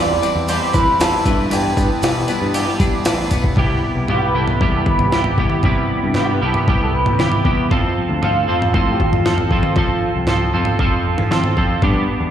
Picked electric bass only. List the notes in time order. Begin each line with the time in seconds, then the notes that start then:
Already playing: E2
0.36 E2
0.74 E3
1.00 E2
1.26 G2
1.77 G2
2.03 B2
2.42 G2
2.80 G3
3.06 A1
3.31 B1
3.57 C2
3.96 B1
4.34 C2
4.61 E2
5.00 C2
5.38 C2
5.64 C3
6.04 G2
6.42 C2
6.68 C2
7.07 C3
7.45 E2
7.71 F2
8.09 D2
8.48 F2
8.74 A2
9.12 F2
9.51 F2
9.76 F3
10.16 C2
10.54 F2
10.79 F2
11.18 F3
11.57 F2
11.82 G2
12.21 E2